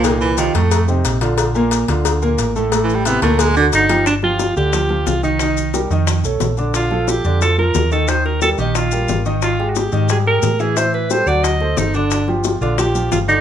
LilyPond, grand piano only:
\new Staff \with { instrumentName = "Grand piano" } { \time 4/4 \key g \minor \tempo 4 = 179 <bes, bes bes'>4 <ees ees' g'>8 <a, a a'>4 <c c' ees'>4 <d d' f'>8~ | <d d' f'>8 <bes, bes bes'>4 <d d' f'>4 <bes, bes bes'>4 <a, a a'>8 | <a, a a'>4 <c c' e'>8 <bes, bes bes'>4 <d d' fis'>4 <f f' g'>8 | r8 <f f' g'>4 <d d' d''>8 <f f' g'>8 <f f' g'>4 <ees ees' ees''>8 |
<ees ees' ees''>4 <g g' bes'>8 <ees ees' ees''>4 <a a' cis''>4 <d d' d''>8~ | <d d' d''>8 <f f' a'>4 <d d' d''>8 <f f' a'>8 <f f' bes'>4 <ees ees' ees''>8 | <ees ees' ees''>4 <g g' bes'>8 <ees ees' ees''>4 <g g' bes'>4 <ees ees' ees''>8~ | <ees ees' ees''>8 <aes g' aes'>4 <ees ees' ees''>8 <g g' aes'>8 <aes g' aes'>4 <e e' e''>8 |
<e e' e''>4 <g g' a'>8 <fis fis' fis''>4 <a a' c''>4 <d d' d''>8~ | <d d' d''>8 <f f' g'>4 <d d' d''>8 <f f' g'>8 <f f' g'>4 <d d' d''>8 | }